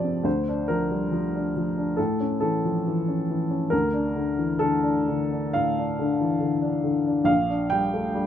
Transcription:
Already playing: C3 F3 G3 C4 D5 A5
0.04 C4
0.23 D2 C5
0.49 D4
0.68 F3 A#4
0.91 G3
1.12 F3
1.35 D4
1.56 F3
1.77 D4
1.97 A2 A4
2.20 C#4
2.40 E3 A4
2.65 F3
2.88 E3
3.08 C#4
3.30 E3
3.51 C#4
3.70 D2 A#4
3.94 D4
4.16 D3
4.38 E3
4.59 D3 A4
4.83 D4
5.08 D3
5.32 D4
5.53 A2 F5
5.79 D4
5.99 D3
6.20 E3
6.40 D3
6.62 D4
6.84 D3
7.07 D4
7.24 A#1 F5
7.50 D4
7.70 G3 G5
7.94 A3
8.14 G3

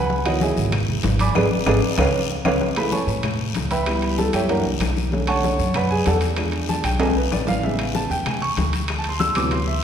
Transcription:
Already playing: C#2 B4 F#5 G#5 B5
0.10 high bongo, high conga, long guiro
0.25 D#3 E3 F#3 B3 F#4 C#5 D#5 F#5, high conga, high timbale, claves
0.41 G#4 D#5 E5 G#5, high bongo, high conga, short guiro
0.57 G#1, high conga, short guiro
0.72 high bongo, high conga, low conga, high timbale, long guiro, claves
0.89 high conga, low conga
1.03 G#1, high bongo, low bongo, high conga, high timbale, low timbale, short guiro
1.19 D5 G#5 B5 D6, high timbale, short guiro
1.35 G#1 G#4 B4 D5, low bongo, high conga, high timbale, long guiro, claves
1.66 G#1 G#4 B4 D5, low bongo, high conga, high timbale, long guiro, claves
1.97 C#2 B4 C#5 F5, low bongo, high conga, high timbale, long guiro, claves
2.45 C#2 B4 C#5 F5, low bongo, high conga, high timbale, long guiro, claves
2.61 high bongo, high conga, long guiro
2.76 G#3 A3 E4 B4 B5, high conga, high timbale, claves
2.92 C#5 G#5 A5 C#6, high bongo, high conga, short guiro
3.07 A2, high conga, short guiro
3.23 high bongo, high conga, low conga, high timbale, long guiro, claves
3.40 high conga
3.54 C#2, high bongo, low bongo, high conga, high timbale, short guiro
3.71 B4 E5 G5 B5, high timbale, short guiro
3.86 G3 B3 E4, high bongo, high conga, high timbale, long guiro, claves
4.02 high bongo, high conga, high timbale
4.18 A4 A5, high bongo, high conga, short guiro
4.33 F#2 G4 C#5 E5 G5, high bongo, high conga, high timbale, short guiro, claves
4.48 E3 A#3 D4 A#4 E5 F#5 A#5, high bongo, high conga, high timbale, long guiro
4.64 C2, high bongo, high conga
4.80 B1, high bongo, low bongo, high conga, high timbale, low timbale, short guiro, claves
4.97 high conga, short guiro
5.11 D3 A3 C#4, high bongo, high conga, long guiro
5.27 C#5 F#5 A5 C#6, high conga, high timbale, claves
5.44 high bongo, high conga, short guiro
5.59 F#2, high conga, short guiro
5.74 B4 D5 F#5 B5, high bongo, high conga, low conga, high timbale, long guiro, claves
5.90 G#4 G#5, high conga
6.06 E2 A4 D5 F#5 A5, high bongo, low bongo, high conga, high timbale, short guiro
6.21 high timbale, short guiro
6.36 F3 G#3 D4, high bongo, high conga, high timbale, long guiro, claves
6.52 high bongo, high timbale
6.69 A5, high bongo, high conga, short guiro
6.84 B1 G5, high bongo, high conga, high timbale, short guiro, claves
6.99 F3 G#3 D4 G#5, high bongo, high conga, high timbale, long guiro
7.16 B1 B4, high bongo, high conga
7.31 A1 D5, high bongo, low bongo, high conga, short guiro, claves
7.47 F5, high conga, low timbale, short guiro
7.63 C#3 G#3 B3 E5, high bongo, high conga, long guiro
7.79 high conga, high timbale, claves
7.95 A5, high bongo, high conga, short guiro
8.10 E2 G5, high conga, short guiro
8.26 G#5, high bongo, high conga, low conga, high timbale, long guiro, claves
8.42 C#6, high conga
8.57 D2, high bongo, low bongo, high conga, high timbale, short guiro
8.73 high timbale, short guiro
8.88 high bongo, high conga, high timbale, long guiro, claves
8.99 A5
9.04 high bongo, high conga, high timbale
9.09 C6
9.20 E6, high bongo, high conga, short guiro
9.35 D2 C3 E3 F#3 B3 D6, high bongo, high conga, high timbale, short guiro, claves
9.51 C6, high bongo, high conga, high timbale, long guiro
9.67 E5, high bongo, high conga

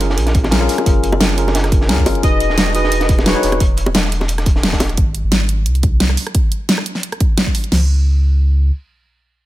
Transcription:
Already playing: F#1 A#4
0.00 C#4 F4 G#4 A#4, closed hi-hat
0.10 snare
0.17 A#1, closed hi-hat
0.26 snare, closed hi-hat
0.34 kick, closed hi-hat
0.43 snare, high bongo
0.51 C#4 F4 G#4 A#4, snare, closed hi-hat
0.60 C#4 F4 G#4 A#4, cross-stick
0.69 snare, closed hi-hat, open hi-hat
0.78 cross-stick, closed hi-hat, high bongo
0.85 F#1 C#4 F4 G#4 A#4, kick, closed hi-hat
1.03 closed hi-hat
1.12 F#1, high bongo
1.20 snare, closed hi-hat
1.29 snare
1.37 C#4 F4 G#4 A#4, closed hi-hat
1.47 snare, high bongo
1.55 snare, closed hi-hat
1.64 cross-stick, snare, closed hi-hat
1.72 kick, closed hi-hat
1.81 snare
1.88 C#2 C#4 F4 G#4 A#4, snare, closed hi-hat
1.98 kick
2.06 F#1 C#4 F4 G#4 A#4, closed hi-hat, open hi-hat, high bongo
2.15 closed hi-hat
2.22 E1 D#4 F#4 G#4 B4 D#5, kick, closed hi-hat
2.40 closed hi-hat
2.50 snare
2.58 snare, closed hi-hat
2.66 snare
2.74 D#4 F#4 G#4 B4 D#5, closed hi-hat
2.84 snare
2.92 closed hi-hat
3.00 snare, closed hi-hat
3.09 kick, closed hi-hat
3.19 snare, high bongo
3.26 D#4 F#4 G#4 B4 C#5, snare, closed hi-hat
3.35 D#4 F#4 G#4 B4, cross-stick
3.43 E1, snare, closed hi-hat, open hi-hat
3.52 cross-stick, closed hi-hat, high bongo
3.60 E1, kick, closed hi-hat
3.77 closed hi-hat
3.86 E1, high bongo
3.94 snare, closed hi-hat
4.04 snare
4.12 closed hi-hat
4.20 snare, high bongo
4.28 closed hi-hat
4.38 cross-stick, snare, closed hi-hat
4.46 kick, closed hi-hat
4.56 snare
4.63 snare, closed hi-hat
4.67 snare, closed hi-hat
4.73 kick, snare, closed hi-hat
4.80 snare, closed hi-hat, open hi-hat, high bongo
4.89 closed hi-hat
4.97 G#1, kick, closed hi-hat
5.15 closed hi-hat
5.24 G#1
5.32 snare, closed hi-hat
5.49 closed hi-hat
5.66 C2, closed hi-hat
5.75 closed hi-hat
5.83 kick, closed hi-hat
6.00 snare, closed hi-hat
6.10 cross-stick
6.17 open hi-hat
6.27 cross-stick, closed hi-hat
6.35 kick, closed hi-hat
6.52 closed hi-hat
6.69 snare, closed hi-hat
6.78 cross-stick
6.86 closed hi-hat
6.95 snare
7.03 closed hi-hat
7.12 cross-stick, closed hi-hat
7.20 kick, closed hi-hat
7.38 snare, closed hi-hat
7.47 kick
7.55 open hi-hat
7.64 closed hi-hat
7.72 C#2, snare, crash

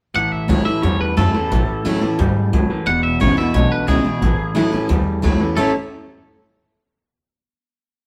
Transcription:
0.14 A1 A2 E3 F#5
0.32 A1 E5
0.48 C#2 A2 E3 F#3 A3 C#4 E4 C#5
0.65 A2 E3 C#4 E4 E5, muted upright bass stroke
0.82 E2 A2 G3 C#5
1.01 B4, muted upright bass stroke
1.17 F#2 A2 E3 F#3 A3 C#4 E4 A4
1.34 A2 E3 C#4 E4, muted upright bass stroke
1.51 A1 A2 E3
1.69 muted upright bass stroke
1.85 C#2 A2 E3 F#3 A3 C#4 E4
2.01 E2 A2 E3 C#4 E4
2.19 D2 G#2 A2 G3
2.36 muted upright bass stroke
2.53 C#2 F#2 A2 F#3
2.70 A2 E3, muted upright bass stroke
2.86 E1 E2 B2 F#5
3.03 E1 E5
3.20 G#1 E2 C#3 D3 G#3 B3 E4 C#5
3.37 E2 B2 B3 E4 E5, muted upright bass stroke
3.54 B1 E2 B2 D3 C#5
3.72 B4, muted upright bass stroke
3.87 C#2 E2 C#3 D3 G#3 B3 E4 G#4
4.04 E2 B2 B3 E4
4.21 A1 A2 E3
4.39 muted upright bass stroke
4.55 C#2 A2 E3 F#3 A3 C#4 E4
4.72 E2 A2 E3 C#4 E4
4.89 D2 E2 A2 G3
5.07 muted upright bass stroke
5.22 C#2 A2 E3 F#3 A3 C#4 E4
5.39 A2 E3 C#4 E4, muted upright bass stroke
5.56 A1 A2 E3 A3 C#4 E4 A4 C#5

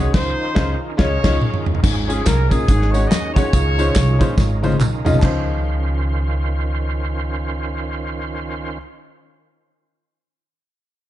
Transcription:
Already playing: D#3 G#3 C#4 D#4 F#4 G#4
0.13 C#2 D#4 F4 C5, kick, snare, crash
0.55 C#2 G#3 C#4 D#4 F4 C5, kick, snare
0.97 C#2 G#3 C#4 D#4 F4 G#4 C#5, kick, snare
1.23 C#2 G#3 C#4 D#4 F4 C#5, kick, snare, crash
1.41 mid tom
1.54 mid tom
1.66 floor tom
1.75 floor tom
1.83 G#1 G#2 F3 G#3 C#4 G#4, kick, crash, tambourine
2.08 C#4 F4 G#4, closed hi-hat, tambourine
2.25 C2 A#4, kick, snare, clap, closed hi-hat, tambourine
2.50 A#1 C#4 D#4 F4 G#4 A#4, kick, closed hi-hat, tambourine
2.68 G#1 G#2 D#3 F#4, kick, closed hi-hat, tambourine
2.82 snare
2.92 G#3 C#4 D#4 F#4 C#5, closed hi-hat, tambourine
3.08 D#5, snare, clap, closed hi-hat, tambourine
3.34 G#3 C#4 D#4 F4 F#4 G#4 C#5, kick, snare, closed hi-hat, tambourine
3.53 C#2 C#3 D#4 F4, kick, closed hi-hat, tambourine
3.78 G#3 C#4 D#4 F4 C5, closed hi-hat, tambourine
3.95 C2, kick, snare, clap, closed hi-hat, tambourine
4.19 A#1 G#3 C#4 D#4 F4 C5, kick, closed hi-hat, tambourine
4.37 G#1, kick, snare, tambourine
4.63 G#3 C#4 D#4 F4 C5, high tom, tambourine
4.72 high tom
4.80 B1, clap, mid tom, tambourine
5.05 C2 G#3 C#4 D#4 F4 D#5, floor tom, tambourine
5.14 floor tom
5.19 C#2 D#3 F3 C#4 D#4 F4, kick, clap, china
5.23 C5

